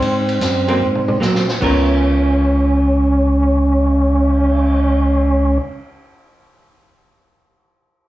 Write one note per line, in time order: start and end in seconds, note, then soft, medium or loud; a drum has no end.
0.00 0.39 G#2 medium
0.00 1.18 C4 medium
0.00 ride medium
0.29 ride soft
0.41 0.79 F#2 medium
0.41 snare medium
0.41 hi-hat pedal medium
0.41 ride medium
0.68 0.80 F#3 medium
0.68 0.80 A#3 medium
0.68 0.80 C4 medium
0.68 ride soft
0.81 1.20 G#2 medium
0.95 mid tom soft
1.08 mid tom medium
1.20 1.60 A#2 medium
1.20 1.45 F#3 medium
1.20 1.45 A#3 medium
1.20 1.45 C4 medium
1.20 snare medium
1.20 hi-hat pedal medium
1.35 snare medium
1.48 snare medium
1.61 5.58 C#2 medium
1.61 5.95 B3 medium
1.61 5.58 C#4 medium
1.61 5.97 F4 medium
1.61 5.98 A#4 medium
1.61 kick medium
1.61 crash medium
1.89 cymbal swell soft